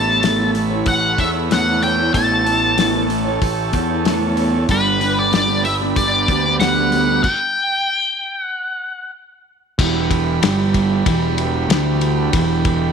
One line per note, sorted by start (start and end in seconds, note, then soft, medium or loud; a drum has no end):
0.00 0.82 A1 medium
0.00 0.23 A3 medium
0.00 0.23 B3 medium
0.00 0.24 E4 medium
0.00 0.24 A4 medium
0.00 4.64 A4 medium
0.00 0.25 C#5 medium
0.00 4.64 C#5 medium
0.00 4.64 E5 medium
0.00 0.50 A5 loud
0.00 2.11 B5 medium
0.23 1.21 A3 medium
0.23 0.55 B3 medium
0.23 0.41 E4 medium
0.23 0.40 A4 medium
0.23 0.39 C#5 medium
0.23 snare loud
0.23 open hi-hat medium
0.39 0.55 E4 medium
0.39 0.56 A4 soft
0.39 0.56 C#5 medium
0.55 muted clean electric guitar stroke soft
0.55 open hi-hat soft
0.70 1.17 E4 medium
0.70 1.18 A4 medium
0.70 1.19 C#5 medium
0.86 1.15 A1 medium
0.86 1.20 F#5 medium
0.86 kick loud
0.86 open hi-hat medium
1.18 2.10 E2 medium
1.18 1.50 B3 medium
1.18 1.34 E4 medium
1.18 1.33 A4 medium
1.18 1.32 C#5 medium
1.18 1.28 E5 medium
1.18 kick medium
1.18 open hi-hat soft
1.34 1.50 E4 medium
1.34 1.51 A4 medium
1.34 1.51 C#5 medium
1.50 1.98 A3 medium
1.50 1.81 B3 medium
1.50 1.67 E4 loud
1.50 1.66 A4 medium
1.50 1.65 C#5 medium
1.50 1.83 F#5 medium
1.50 snare loud
1.50 open hi-hat medium
1.66 1.81 E4 medium
1.66 1.82 A4 medium
1.66 1.82 C#5 medium
1.81 2.13 B3 medium
1.81 1.98 E4 medium
1.81 1.97 A4 medium
1.81 1.96 C#5 medium
1.81 2.12 G5 medium
1.81 open hi-hat soft
1.97 2.13 E4 medium
1.97 2.13 A4 medium
1.97 2.14 C#5 medium
2.13 3.38 A1 medium
2.13 2.75 A3 medium
2.13 2.45 B3 medium
2.13 2.45 E4 medium
2.13 2.46 A4 medium
2.13 2.46 C#5 medium
2.13 3.36 A5 medium
2.13 4.67 A5 medium
2.13 kick medium
2.13 open hi-hat medium
2.45 2.77 B3 medium
2.45 2.77 E4 medium
2.45 2.77 A4 medium
2.45 2.77 C#5 medium
2.45 open hi-hat medium
2.77 3.25 A3 medium
2.77 3.08 B3 medium
2.77 2.93 E4 medium
2.77 2.92 A4 medium
2.77 2.91 C#5 loud
2.77 snare loud
2.77 open hi-hat medium
2.92 3.08 E4 medium
2.92 3.08 C#5 medium
3.09 muted clean electric guitar stroke soft
3.09 open hi-hat medium
3.24 3.72 E4 medium
3.24 3.72 A4 medium
3.24 3.73 C#5 medium
3.36 4.01 G5 medium
3.42 3.71 A1 medium
3.42 kick loud
3.42 open hi-hat medium
3.72 4.65 E2 medium
3.72 4.05 B3 medium
3.72 3.89 E4 medium
3.72 3.89 A4 medium
3.72 3.88 C#5 medium
3.72 kick medium
3.72 open hi-hat medium
3.89 4.05 E4 medium
3.89 4.05 A4 medium
3.89 4.06 C#5 medium
4.05 4.53 A3 medium
4.05 4.36 B3 medium
4.05 4.22 E4 medium
4.05 4.21 A4 medium
4.05 4.19 C#5 loud
4.05 snare loud
4.05 open hi-hat medium
4.21 4.36 E4 medium
4.21 4.36 A4 medium
4.21 4.37 C#5 medium
4.36 4.69 B3 medium
4.36 4.53 E4 medium
4.36 4.52 A4 medium
4.36 4.51 C#5 medium
4.36 open hi-hat soft
4.52 4.68 E4 medium
4.52 4.67 A4 medium
4.52 4.66 C#5 medium
4.68 5.92 G1 medium
4.68 4.99 G3 medium
4.68 5.00 B3 medium
4.68 5.00 D4 medium
4.68 7.22 G4 medium
4.68 5.01 G4 medium
4.68 7.22 B4 medium
4.68 5.19 B4 medium
4.68 7.21 D5 medium
4.68 7.21 B5 medium
4.68 kick loud
4.68 open hi-hat medium
5.00 5.30 G3 medium
5.00 5.32 B3 medium
5.00 5.32 D4 medium
5.00 5.33 G4 medium
5.00 open hi-hat medium
5.19 5.33 D5 medium
5.32 5.63 G3 medium
5.32 5.49 B3 medium
5.32 5.48 D4 medium
5.32 5.47 G4 medium
5.32 5.65 D5 medium
5.32 snare loud
5.32 open hi-hat medium
5.48 5.63 B3 soft
5.48 5.63 D4 medium
5.48 5.64 G4 medium
5.64 5.73 E5 medium
5.64 muted clean electric guitar stroke soft
5.64 open hi-hat soft
5.80 6.27 B3 medium
5.80 6.28 D4 medium
5.80 6.28 G4 medium
5.96 6.25 G1 medium
5.96 6.56 D5 medium
5.96 kick loud
5.96 open hi-hat medium
6.27 7.20 D2 medium
6.27 6.58 G3 medium
6.27 6.44 B3 medium
6.27 6.43 D4 medium
6.27 6.42 G4 medium
6.27 kick medium
6.27 open hi-hat soft
6.43 6.59 B3 medium
6.43 6.60 D4 medium
6.43 6.60 G4 medium
6.59 6.90 G3 medium
6.59 6.77 B3 medium
6.59 6.76 D4 medium
6.59 6.75 G4 medium
6.59 7.23 F#5 medium
6.59 snare loud
6.59 open hi-hat medium
6.76 6.91 B3 medium
6.76 6.92 D4 medium
6.76 6.92 G4 medium
6.92 7.22 G3 medium
6.92 7.08 B3 medium
6.92 7.07 D4 medium
6.92 7.06 G4 medium
6.92 open hi-hat soft
7.07 7.23 B3 medium
7.07 7.22 D4 medium
7.07 7.22 G4 medium
7.23 8.42 G5 medium
7.23 kick medium
7.23 crash medium
8.42 9.11 F#5 medium
9.79 10.38 E1 medium
9.79 10.42 E2 medium
9.79 10.42 E3 medium
9.79 12.92 E3 medium
9.79 12.92 G3 medium
9.79 12.92 G4 medium
9.79 12.92 B5 medium
9.79 kick loud
9.79 crash loud
10.11 kick medium
10.11 ride medium
10.42 11.02 G1 medium
10.42 11.05 G2 medium
10.42 11.05 G3 medium
10.42 snare loud
10.42 ride medium
10.74 kick medium
10.74 ride medium
11.06 11.66 E1 medium
11.06 11.69 E2 medium
11.06 11.69 E3 medium
11.06 kick loud
11.06 ride medium
11.38 ride medium
11.69 12.29 D2 medium
11.69 12.32 D3 medium
11.69 12.32 D4 medium
11.69 snare loud
11.69 ride medium
12.01 ride medium
12.33 12.92 E1 loud
12.33 12.92 E2 medium
12.33 12.92 E3 medium
12.33 kick loud
12.33 ride medium
12.65 kick medium
12.65 ride medium